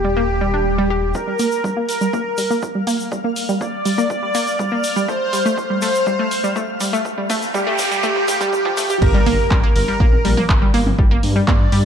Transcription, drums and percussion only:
1.14 kick loud
1.14 shaker soft
1.39 open hi-hat loud
1.39 shaker medium
1.52 shaker medium
1.64 kick loud
1.64 shaker soft
1.89 open hi-hat loud
1.89 shaker medium
2.01 shaker soft
2.13 kick loud
2.13 shaker soft
2.37 open hi-hat loud
2.37 shaker medium
2.51 shaker medium
2.62 kick loud
2.62 shaker soft
2.87 open hi-hat loud
2.87 shaker medium
3.00 shaker soft
3.12 kick loud
3.12 shaker soft
3.36 open hi-hat loud
3.36 shaker medium
3.49 shaker medium
3.61 kick loud
3.61 shaker soft
3.85 open hi-hat loud
3.85 shaker medium
3.99 shaker medium
4.10 kick loud
4.10 shaker soft
4.35 open hi-hat loud
4.35 shaker loud
4.47 shaker medium
4.59 kick loud
4.59 shaker soft
4.84 open hi-hat loud
4.84 shaker medium
4.97 shaker soft
5.08 kick loud
5.08 shaker soft
5.33 open hi-hat loud
5.33 shaker medium
5.46 shaker medium
5.58 kick loud
5.58 shaker soft
5.82 open hi-hat loud
5.82 shaker loud
5.95 shaker medium
6.07 kick loud
6.07 shaker soft
6.31 open hi-hat loud
6.31 shaker medium
6.44 shaker medium
6.56 kick loud
6.56 shaker soft
6.80 open hi-hat loud
6.80 shaker medium
6.94 shaker medium
7.05 kick loud
7.05 shaker soft
7.30 kick loud
7.30 open hi-hat loud
7.30 shaker medium
7.42 shaker medium
7.54 kick loud
7.54 shaker soft
7.78 kick loud
7.78 open hi-hat loud
7.78 shaker loud
7.92 shaker soft
8.03 kick loud
8.03 shaker soft
8.16 kick medium
8.28 kick loud
8.28 open hi-hat loud
8.28 shaker loud
8.41 kick loud
8.41 shaker medium
8.53 kick loud
8.53 shaker soft
8.65 kick medium
8.77 kick loud
8.77 open hi-hat loud
8.77 shaker loud
8.90 kick medium
8.90 shaker medium
9.02 kick loud
9.02 crash loud
9.26 open hi-hat loud
9.51 kick loud
9.51 clap loud
9.51 high conga medium
9.76 open hi-hat loud
10.00 kick loud
10.13 high conga medium
10.25 open hi-hat loud
10.38 mid tom loud
10.49 kick loud
10.49 clap loud
10.74 open hi-hat loud
10.87 mid tom medium
10.87 high conga loud
10.99 kick loud
11.23 open hi-hat loud
11.48 kick loud
11.48 clap loud
11.48 high conga loud
11.72 open hi-hat loud

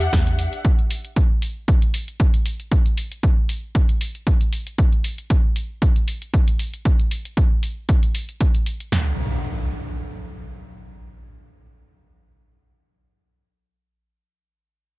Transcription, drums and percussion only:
0.01 closed hi-hat soft
0.01 shaker soft
0.13 kick loud
0.13 snare loud
0.13 closed hi-hat medium
0.13 high conga medium
0.13 shaker soft
0.27 closed hi-hat medium
0.39 closed hi-hat medium
0.39 open hi-hat medium
0.39 shaker medium
0.53 closed hi-hat soft
0.53 shaker soft
0.65 kick loud
0.65 closed hi-hat medium
0.79 closed hi-hat soft
0.90 open hi-hat loud
1.05 closed hi-hat soft
1.16 kick loud
1.16 closed hi-hat medium
1.42 open hi-hat medium
1.68 kick loud
1.68 closed hi-hat medium
1.82 closed hi-hat soft
1.94 open hi-hat loud
2.08 closed hi-hat soft
2.20 kick loud
2.20 closed hi-hat medium
2.34 closed hi-hat medium
2.46 open hi-hat medium
2.60 closed hi-hat soft
2.72 kick loud
2.72 closed hi-hat medium
2.86 closed hi-hat soft
2.97 open hi-hat loud
3.12 closed hi-hat soft
3.23 kick loud
3.23 closed hi-hat medium
3.49 open hi-hat medium
3.75 kick loud
3.75 closed hi-hat medium
3.89 closed hi-hat soft
4.01 open hi-hat loud
4.15 closed hi-hat soft
4.27 kick medium
4.27 closed hi-hat medium
4.41 closed hi-hat medium
4.53 open hi-hat medium
4.67 closed hi-hat soft
4.78 kick loud
4.78 closed hi-hat medium
4.93 closed hi-hat soft
5.04 open hi-hat medium
5.18 closed hi-hat soft
5.30 kick medium
5.30 closed hi-hat medium
5.56 open hi-hat medium
5.82 kick loud
5.82 closed hi-hat medium
5.96 closed hi-hat soft
6.08 open hi-hat medium
6.22 closed hi-hat soft
6.34 kick medium
6.34 closed hi-hat medium
6.48 closed hi-hat medium
6.59 open hi-hat medium
6.74 closed hi-hat soft
6.85 kick loud
6.85 closed hi-hat medium
6.99 closed hi-hat soft
7.11 open hi-hat medium
7.25 closed hi-hat soft
7.37 kick medium
7.37 closed hi-hat medium
7.63 open hi-hat medium
7.89 kick loud
7.89 closed hi-hat medium
8.03 closed hi-hat soft
8.15 open hi-hat medium
8.29 closed hi-hat soft
8.40 kick medium
8.40 closed hi-hat medium
8.55 closed hi-hat medium
8.66 open hi-hat medium
8.80 closed hi-hat medium
8.92 snare medium
8.92 floor tom medium

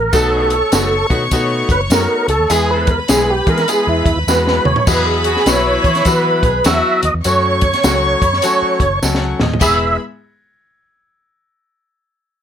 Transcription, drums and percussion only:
0.13 kick loud
0.13 closed hi-hat medium
0.13 tambourine medium
0.50 closed hi-hat medium
0.72 snare loud
0.72 closed hi-hat medium
0.72 tambourine loud
1.10 kick medium
1.10 closed hi-hat medium
1.31 kick medium
1.31 closed hi-hat medium
1.31 tambourine medium
1.69 kick medium
1.69 closed hi-hat medium
1.90 snare loud
1.90 closed hi-hat medium
1.90 tambourine medium
2.28 closed hi-hat medium
2.50 closed hi-hat medium
2.50 tambourine medium
2.87 kick medium
2.87 closed hi-hat medium
3.08 snare loud
3.08 closed hi-hat medium
3.08 tambourine loud
3.47 kick medium
3.47 closed hi-hat medium
3.57 snare soft
3.57 closed hi-hat medium
3.68 closed hi-hat medium
3.68 tambourine medium
4.06 kick medium
4.06 closed hi-hat medium
4.28 snare medium
4.28 tambourine medium
4.47 snare medium
4.65 mid tom medium
4.76 floor tom medium
4.87 kick loud
4.87 crash loud
4.87 tambourine medium
5.24 closed hi-hat medium
5.37 snare soft
5.46 snare loud
5.46 closed hi-hat medium
5.46 tambourine medium
5.84 kick medium
5.84 closed hi-hat medium
5.95 snare soft
5.95 closed hi-hat medium
6.05 kick medium
6.05 closed hi-hat medium
6.05 tambourine medium
6.43 kick medium
6.43 closed hi-hat medium
6.64 snare loud
6.64 closed hi-hat medium
6.64 tambourine medium
7.03 closed hi-hat medium
7.24 closed hi-hat medium
7.24 tambourine medium
7.61 kick medium
7.61 closed hi-hat medium
7.73 snare soft
7.73 closed hi-hat soft
7.83 snare loud
7.83 closed hi-hat medium
7.83 tambourine medium
8.22 kick medium
8.22 closed hi-hat medium
8.33 snare soft
8.42 closed hi-hat loud
8.42 tambourine medium
8.80 kick medium
8.80 closed hi-hat medium
9.03 snare medium
9.03 tambourine medium
9.15 snare medium
9.40 snare medium
9.40 floor tom medium
9.54 floor tom medium
9.61 kick loud
9.61 crash medium
9.61 tambourine medium

